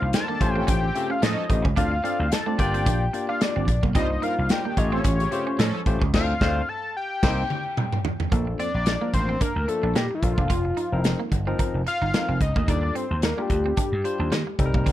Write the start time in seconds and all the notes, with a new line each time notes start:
Already playing: A#3 D4 D#4 F4 C5 F5
0.02 C2
0.13 G3 F4 A#4 A5, snare, closed hi-hat
0.28 D#3 A#3 D4 G4
0.41 A1 A3 C#4 F4 G4 C5, muted clean electric guitar stroke, kick, closed hi-hat
0.56 F3 C4 C#4 A4
0.67 A1 C#4 G5, kick, closed hi-hat
0.83 C#3 C4 G4
0.95 C#3 A3 C4 C#4 F4 G4 A4, muted clean electric guitar stroke, closed hi-hat
1.10 C#4 F5
1.22 A2 F3 A3 C#4 A4 D#5, snare, closed hi-hat
1.38 muted clean electric guitar stroke
1.49 A1 A3 C#4 F4 G4 C5, kick, closed hi-hat
1.65 C#2 C#4, kick
1.76 D2 C4 D4 F4 A4 D5 F5, kick, closed hi-hat
1.92 muted clean electric guitar stroke
2.04 C4 D4 F4 A4 D5, closed hi-hat
2.20 D2
2.32 A5, snare, closed hi-hat
2.46 A3 C4 D4 F4 A4 D5
2.58 G1 A#3 D4 F4 G4 D5 G5, muted clean electric guitar stroke, kick, closed hi-hat
2.74 C4, closed hi-hat
2.86 A#1 D4, kick, closed hi-hat
3.13 A#3 D4 F4 G4 D5, muted clean electric guitar stroke, closed hi-hat
3.29 D4 F5
3.41 D5, snare, closed hi-hat
3.56 G1 C4
3.68 A#1, muted clean electric guitar stroke, kick, closed hi-hat
3.83 B1 A#3, kick
3.95 C2 G3 A#3 C4 D4 D#4 F4 C5 D#5, kick, closed hi-hat
4.10 muted clean electric guitar stroke
4.22 G3 D#4 F4 A#4 F5, closed hi-hat
4.39 C2
4.49 G3 F4 A#4 G5, snare, closed hi-hat
4.65 D#3 A#3 D4 G4
4.77 A1 A3 C#4 F4 G4 C#5 D#5, muted clean electric guitar stroke, kick, closed hi-hat
4.92 F3 C4 C#4 A4 C#5
5.04 A1 C#4, kick, closed hi-hat
5.20 C#3 C4 G4, closed hi-hat
5.31 C#3 A3 C4 C#4 F4 G4 C5, muted clean electric guitar stroke, closed hi-hat
5.47 C#4
5.58 A2 F3 A3 C#4 A4, snare, closed hi-hat
5.75 muted clean electric guitar stroke
5.86 A1 A3 C#4 F4 G4 C5, kick, closed hi-hat
6.02 C#2 C#4, kick
6.14 D2 A3 C4 D4 F4 C5 F5, kick, snare, crash
6.41 D2 A3 C4 D4 F4 C5, kick, snare
6.69 A5
6.97 G5
7.23 C2 A#3 C4 D#4 G4 C5, kick, snare, crash
7.50 high tom
7.77 mid tom
7.93 mid tom
8.05 floor tom
8.20 floor tom
8.32 A#1 F3 A#3 D4 A4, kick, closed hi-hat
8.47 muted clean electric guitar stroke
8.59 C4 D5, closed hi-hat
8.74 A#1
8.86 snare, closed hi-hat
9.01 F3 A#3 D4 A#4
9.14 A1 C5, muted clean electric guitar stroke, kick, closed hi-hat
9.29 C4
9.41 D4 A#4, kick, closed hi-hat
9.56 D2
9.68 F3 A#3 D4 A4, muted clean electric guitar stroke, closed hi-hat
9.83 A#1 D4
9.95 A#2 A#3 G4, snare, closed hi-hat
10.11 F4, muted clean electric guitar stroke
10.22 A#1 F3 A#3 D4 A4, kick, closed hi-hat
10.38 E1 D4, kick
10.50 F1 F4, kick, closed hi-hat
10.65 muted clean electric guitar stroke
10.77 D#4, closed hi-hat
10.92 F1 F3 C4 D#4 A#4
11.04 D#4, snare, closed hi-hat
11.20 A#3
11.32 G1, muted clean electric guitar stroke, kick, closed hi-hat
11.47 F3 C4 D#4 A#4
11.59 D#4, kick, closed hi-hat
11.74 F1
11.87 F5, muted clean electric guitar stroke, closed hi-hat
12.01 G1 D#4
12.13 F3 C4 D#4 A#4, snare, closed hi-hat
12.29 F1 C4
12.41 C#2 D#5, muted clean electric guitar stroke, kick, closed hi-hat
12.56 D2 A#3, kick
12.68 D#2 G3 D4 D#4 F4 A4 D5, kick, closed hi-hat
12.83 muted clean electric guitar stroke
12.95 C4 C5, closed hi-hat
13.11 D#2
13.22 A#4, snare, closed hi-hat
13.37 G3 A#3 D4 F4 G4
13.42 G4
13.50 D2, muted clean electric guitar stroke, kick, closed hi-hat
13.66 C4
13.77 D4, kick, closed hi-hat
13.92 G2
14.04 G3 D4 F4 C5, muted clean electric guitar stroke, closed hi-hat
14.19 D#2 D4
14.31 D#3 A#3, snare, closed hi-hat
14.47 muted clean electric guitar stroke
14.59 C2 G3 C4 D#4 A4, kick, closed hi-hat
14.66 A#4
14.74 B1 A#3, kick
14.86 C2 C4, kick, closed hi-hat